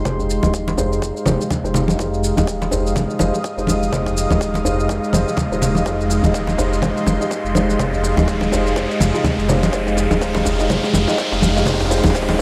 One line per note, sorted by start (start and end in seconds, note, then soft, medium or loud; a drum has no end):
0.00 12.41 G#3 medium
0.00 12.41 D#5 medium
0.00 12.41 F5 medium
0.00 1.98 C6 medium
0.00 riser medium
0.05 0.40 F1 loud
0.05 0.40 D#4 medium
0.05 0.40 G4 medium
0.05 0.40 G#4 medium
0.05 0.40 C5 medium
0.05 kick loud
0.05 mid tom medium
0.05 low conga medium
0.05 shaker medium
0.20 djembe tone medium
0.20 shaker soft
0.30 shaker medium
0.43 0.75 D#1 loud
0.43 0.75 D#4 medium
0.43 0.75 G4 medium
0.43 0.75 G#4 medium
0.43 0.75 D#5 medium
0.43 mid tom soft
0.43 djembe slap loud
0.43 high conga medium
0.43 djembe tone medium
0.43 djembe bass medium
0.43 shaker soft
0.54 kick loud
0.54 shaker medium
0.68 djembe slap loud
0.68 high conga medium
0.68 shaker soft
0.78 1.12 F1 medium
0.78 1.24 D#4 medium
0.78 1.24 G4 medium
0.78 1.24 G#4 medium
0.78 1.24 C5 medium
0.78 mid tom soft
0.78 djembe tone medium
0.78 shaker medium
0.93 shaker soft
1.02 kick loud
1.02 mid tom medium
1.02 shaker medium
1.17 shaker soft
1.26 1.38 F1 medium
1.26 1.39 D#4 medium
1.26 1.39 G4 medium
1.26 1.39 G#4 medium
1.26 1.39 C5 medium
1.26 high conga loud
1.26 djembe tone medium
1.26 low conga medium
1.26 shaker medium
1.41 shaker soft
1.50 kick loud
1.50 high conga medium
1.50 low conga medium
1.50 djembe bass medium
1.50 shaker medium
1.64 1.96 F1 medium
1.64 1.96 D#4 medium
1.64 1.96 G4 medium
1.64 1.96 G#4 medium
1.64 1.96 C5 medium
1.64 shaker soft
1.74 mid tom medium
1.74 djembe slap medium
1.74 low conga medium
1.74 shaker medium
1.88 high conga loud
1.88 shaker soft
1.99 2.33 F1 loud
1.99 2.34 D#4 medium
1.99 2.34 G4 medium
1.99 2.34 G#4 medium
1.99 2.34 C5 medium
1.99 5.85 D#6 medium
1.99 kick loud
1.99 mid tom medium
1.99 shaker medium
2.14 shaker soft
2.24 shaker medium
2.37 2.69 D#1 loud
2.37 2.69 D#4 medium
2.37 2.69 G4 medium
2.37 2.69 G#4 medium
2.37 2.69 D#5 medium
2.37 djembe slap loud
2.37 high conga medium
2.37 djembe tone medium
2.37 djembe bass medium
2.37 shaker soft
2.47 kick loud
2.47 shaker medium
2.62 djembe slap loud
2.62 high conga medium
2.62 shaker soft
2.71 3.06 F1 medium
2.71 3.17 D#4 medium
2.71 3.17 G4 medium
2.71 3.17 G#4 medium
2.71 3.17 C5 medium
2.71 mid tom medium
2.71 djembe tone medium
2.71 shaker medium
2.87 shaker soft
2.96 kick loud
2.96 mid tom medium
2.96 high conga medium
2.96 low conga medium
2.96 shaker medium
3.10 shaker soft
3.19 3.31 F1 medium
3.19 3.33 D#4 medium
3.19 3.33 G4 medium
3.19 3.33 G#4 medium
3.19 3.33 C5 loud
3.19 djembe slap medium
3.19 high conga loud
3.19 shaker medium
3.34 mid tom medium
3.34 shaker soft
3.44 kick loud
3.44 shaker medium
3.58 3.90 F1 medium
3.58 3.90 D#4 medium
3.58 3.90 G4 medium
3.58 3.90 G#4 medium
3.58 3.90 C5 medium
3.58 shaker soft
3.67 mid tom medium
3.67 high conga loud
3.67 djembe tone medium
3.67 shaker medium
3.83 shaker soft
3.92 4.27 F1 loud
3.92 4.27 D#4 medium
3.92 4.27 G4 medium
3.92 4.27 G#4 medium
3.92 4.27 C5 medium
3.92 kick loud
3.92 mid tom medium
3.92 low conga medium
3.92 shaker medium
4.06 kick medium
4.06 djembe tone medium
4.06 shaker soft
4.17 shaker medium
4.30 4.62 D#1 loud
4.30 4.62 D#4 medium
4.30 4.62 G4 medium
4.30 4.62 G#4 medium
4.30 4.62 D#5 medium
4.30 mid tom medium
4.30 djembe slap loud
4.30 high conga medium
4.30 djembe tone medium
4.30 djembe bass medium
4.30 shaker soft
4.41 kick loud
4.41 shaker medium
4.54 djembe slap medium
4.54 high conga medium
4.54 shaker soft
4.65 4.99 F1 medium
4.65 5.11 D#4 medium
4.65 5.11 G4 medium
4.65 5.11 G#4 medium
4.65 5.11 C5 medium
4.65 mid tom medium
4.65 djembe tone loud
4.65 shaker medium
4.80 shaker soft
4.89 kick loud
4.89 mid tom medium
4.89 shaker medium
5.04 shaker soft
5.13 5.25 F1 medium
5.13 5.27 D#4 medium
5.13 5.27 G4 medium
5.13 5.27 G#4 medium
5.13 5.27 C5 loud
5.13 djembe tone medium
5.13 high conga loud
5.13 low conga medium
5.13 shaker medium
5.28 shaker soft
5.37 kick loud
5.37 high conga loud
5.37 low conga medium
5.37 djembe bass medium
5.37 shaker medium
5.51 5.83 D#1 medium
5.51 5.84 D#4 medium
5.51 5.84 G4 medium
5.51 5.84 G#4 medium
5.51 5.84 C5 medium
5.51 shaker soft
5.62 mid tom medium
5.62 djembe slap medium
5.62 low conga medium
5.62 shaker medium
5.75 high conga loud
5.75 shaker soft
5.86 6.20 F1 loud
5.86 6.21 D#4 medium
5.86 6.21 G4 medium
5.86 6.21 G#4 medium
5.86 6.21 C5 medium
5.86 9.72 C6 medium
5.86 kick loud
5.86 mid tom medium
5.86 shaker medium
6.01 shaker soft
6.10 mid tom medium
6.10 shaker medium
6.23 6.56 D#1 loud
6.23 6.56 D#4 medium
6.23 6.56 G4 medium
6.23 6.56 G#4 medium
6.23 6.56 D#5 medium
6.23 djembe slap medium
6.23 high conga medium
6.23 djembe tone medium
6.23 djembe bass medium
6.23 shaker soft
6.34 kick loud
6.34 mid tom medium
6.34 shaker medium
6.47 djembe slap medium
6.47 high conga medium
6.47 shaker soft
6.58 6.93 F1 medium
6.58 6.81 D#4 medium
6.58 6.81 G4 medium
6.58 6.81 G#4 medium
6.58 6.81 C5 medium
6.58 mid tom medium
6.58 djembe tone medium
6.58 shaker medium
6.73 shaker soft
6.82 7.17 D#4 medium
6.82 7.17 G4 medium
6.82 7.17 G#4 medium
6.82 7.17 C5 medium
6.82 kick loud
6.82 mid tom medium
6.82 high conga medium
6.82 low conga medium
6.82 shaker medium
6.97 shaker soft
7.06 7.18 F1 medium
7.06 mid tom medium
7.06 djembe slap medium
7.06 high conga loud
7.06 shaker medium
7.21 7.53 D#4 medium
7.21 7.53 G4 medium
7.21 7.53 G#4 medium
7.21 7.53 D#5 medium
7.21 shaker soft
7.31 kick loud
7.31 mid tom medium
7.31 shaker medium
7.45 7.77 F1 medium
7.45 shaker soft
7.55 7.78 D#4 medium
7.55 7.78 G4 medium
7.55 7.78 G#4 medium
7.55 7.78 C5 medium
7.55 mid tom medium
7.55 djembe tone medium
7.55 high conga loud
7.55 shaker medium
7.70 shaker soft
7.79 8.14 F1 loud
7.79 8.14 D#4 medium
7.79 8.14 G4 medium
7.79 8.14 G#4 medium
7.79 8.14 C5 medium
7.79 kick loud
7.79 mid tom medium
7.79 low conga medium
7.79 shaker medium
7.93 djembe tone medium
7.93 shaker soft
8.04 mid tom medium
8.04 shaker medium
8.17 8.49 D#1 loud
8.17 8.50 D#4 medium
8.17 8.50 G4 medium
8.17 8.50 G#4 medium
8.17 8.50 D#5 medium
8.17 djembe slap loud
8.17 djembe tone medium
8.17 high conga medium
8.17 djembe bass medium
8.17 shaker soft
8.28 kick loud
8.28 mid tom medium
8.28 shaker medium
8.41 djembe slap loud
8.41 high conga medium
8.41 shaker soft
8.52 8.87 F1 medium
8.52 8.75 D#4 medium
8.52 8.75 G4 medium
8.52 8.75 G#4 medium
8.52 8.75 C5 medium
8.52 mid tom medium
8.52 djembe tone medium
8.52 shaker medium
8.67 shaker soft
8.76 9.11 D#4 medium
8.76 9.11 G4 medium
8.76 9.11 G#4 medium
8.76 9.11 C5 medium
8.76 kick loud
8.76 mid tom medium
8.76 shaker medium
8.91 shaker soft
9.00 9.12 F1 medium
9.00 mid tom medium
9.00 high conga medium
9.00 djembe tone medium
9.00 low conga medium
9.00 shaker medium
9.14 9.46 D#4 medium
9.14 9.46 G4 medium
9.14 9.47 G#4 medium
9.14 9.47 D#5 medium
9.14 shaker soft
9.24 kick loud
9.24 mid tom medium
9.24 high conga medium
9.24 djembe bass medium
9.24 low conga medium
9.24 shaker soft
9.39 9.70 F1 loud
9.39 shaker soft
9.49 9.72 D#4 medium
9.49 9.72 G4 medium
9.49 9.72 G#4 medium
9.49 9.72 C5 medium
9.49 mid tom medium
9.49 djembe slap medium
9.49 low conga medium
9.49 shaker medium
9.63 high conga loud
9.63 shaker soft
9.73 10.07 F1 loud
9.73 10.08 D#4 medium
9.73 10.08 G4 medium
9.73 10.08 G#4 medium
9.73 10.08 C5 medium
9.73 kick loud
9.73 mid tom medium
9.73 shaker soft
9.87 mid tom medium
9.87 shaker soft
9.97 mid tom medium
9.97 shaker medium
10.11 10.43 D#1 loud
10.11 10.20 D#4 medium
10.11 10.20 G4 medium
10.11 10.20 G#4 medium
10.11 10.20 D#5 medium
10.11 mid tom medium
10.11 djembe slap loud
10.11 djembe tone medium
10.11 high conga medium
10.11 djembe bass medium
10.11 shaker soft
10.21 10.56 D#4 medium
10.21 10.56 G4 medium
10.21 10.56 G#4 medium
10.21 10.56 C5 loud
10.21 kick loud
10.21 mid tom loud
10.21 shaker soft
10.35 mid tom medium
10.35 djembe slap loud
10.35 high conga medium
10.35 shaker soft
10.45 10.80 F1 medium
10.45 mid tom medium
10.45 djembe tone medium
10.45 shaker medium
10.59 10.69 D#4 medium
10.59 10.69 G4 medium
10.59 10.69 G#4 medium
10.59 10.69 D#5 medium
10.59 mid tom medium
10.59 shaker soft
10.70 11.05 D#4 medium
10.70 11.05 G4 medium
10.70 11.05 G#4 medium
10.70 11.05 C5 medium
10.70 kick loud
10.70 mid tom medium
10.70 high conga medium
10.70 low conga medium
10.70 shaker medium
10.83 mid tom medium
10.83 shaker soft
10.93 11.06 F1 medium
10.93 mid tom loud
10.93 djembe slap medium
10.93 high conga medium
10.93 shaker medium
11.08 11.17 D#4 medium
11.08 11.17 G4 medium
11.08 11.17 G#4 medium
11.08 11.17 D#5 medium
11.08 mid tom medium
11.08 shaker soft
11.18 11.53 D#4 medium
11.18 11.53 G4 medium
11.18 11.53 G#4 medium
11.18 11.53 C5 loud
11.18 kick loud
11.18 mid tom loud
11.18 shaker soft
11.32 11.64 F1 medium
11.32 mid tom medium
11.32 shaker soft
11.42 mid tom loud
11.42 high conga loud
11.42 djembe tone medium
11.42 shaker medium
11.56 11.65 D#4 medium
11.56 11.65 G4 medium
11.56 11.65 G#4 medium
11.56 11.65 D#5 medium
11.56 mid tom medium
11.56 shaker soft
11.66 12.01 F1 loud
11.66 11.89 D#4 medium
11.66 11.89 G4 medium
11.66 11.89 G#4 medium
11.66 11.89 C5 medium
11.66 kick loud
11.66 mid tom loud
11.66 low conga medium
11.66 shaker medium
11.73 mid tom medium
11.81 kick medium
11.81 mid tom medium
11.81 djembe tone medium
11.81 shaker soft
11.85 mid tom medium
11.91 12.13 D#4 medium
11.91 12.13 G4 medium
11.91 12.13 G#4 medium
11.91 12.13 C5 loud
11.91 mid tom loud
11.91 shaker medium
11.98 mid tom medium
12.04 12.37 D#1 loud
12.04 mid tom medium
12.04 djembe slap loud
12.04 high conga medium
12.04 djembe tone medium
12.04 djembe bass loud
12.04 shaker soft
12.10 mid tom medium
12.15 12.38 D#4 medium
12.15 12.38 G4 medium
12.15 12.37 G#4 medium
12.15 12.38 C5 loud
12.15 kick loud
12.15 mid tom loud
12.15 shaker medium
12.22 mid tom medium
12.29 mid tom medium
12.29 djembe slap loud
12.29 high conga medium
12.29 shaker soft
12.34 mid tom medium